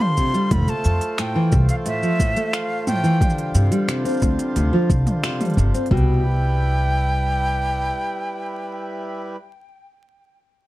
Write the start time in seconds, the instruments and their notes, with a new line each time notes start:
Already playing: harmonium D3 G3 F4 C5
0.00 flute C6, mid tom
0.17 nylon-string guitar C3, kick, shaker
0.34 nylon-string guitar G3, shaker
0.51 upright bass F1, nylon-string guitar A2, harmonium A3 C5, flute B5, kick, mid tom, open hi-hat, shaker
0.68 nylon-string guitar A3, flute A5, open hi-hat, shaker
0.84 upright bass F2, shaker
1.01 open hi-hat, shaker
1.18 nylon-string guitar A2, flute G5, finger snap, open hi-hat, shaker
1.36 nylon-string guitar E3
1.52 upright bass C2, kick, shaker
1.69 flute F5, open hi-hat, shaker
1.86 nylon-string guitar A2, flute E5, open hi-hat, shaker
2.02 nylon-string guitar F3, shaker
2.19 nylon-string guitar A2, kick, shaker
2.36 nylon-string guitar A3, open hi-hat, shaker
2.53 flute F5, finger snap, open hi-hat, shaker
2.87 nylon-string guitar A2, flute G5, mid tom, shaker
3.04 nylon-string guitar E3, shaker
3.21 harmonium D3 G3 F4 C5, kick, mid tom, open hi-hat, shaker
3.30 shaker
3.38 open hi-hat
3.54 upright bass G2, nylon-string guitar C3, shaker
3.71 nylon-string guitar G3, open hi-hat, shaker
3.88 nylon-string guitar C3, finger snap, open hi-hat, shaker
4.05 nylon-string guitar C4, open hi-hat, shaker
4.09 shaker
4.11 shaker
4.14 shaker
4.17 shaker
4.20 upright bass D2, shaker
4.22 kick, shaker
4.39 open hi-hat, shaker
4.56 upright bass D2, nylon-string guitar C3, open hi-hat, shaker
4.73 nylon-string guitar F3
4.90 upright bass C2, kick, shaker
5.07 mid tom, open hi-hat, shaker
5.23 nylon-string guitar C3, finger snap, open hi-hat, shaker
5.40 nylon-string guitar G3, mid tom, open hi-hat, shaker
5.45 open hi-hat
5.50 open hi-hat
5.54 upright bass G1, nylon-string guitar C3, kick, open hi-hat
5.58 shaker
5.74 nylon-string guitar C4, open hi-hat, shaker
5.86 open hi-hat
5.91 upright bass C2, nylon-string guitar B2, harmonium G3 E4 B4, flute G5, kick
5.97 open hi-hat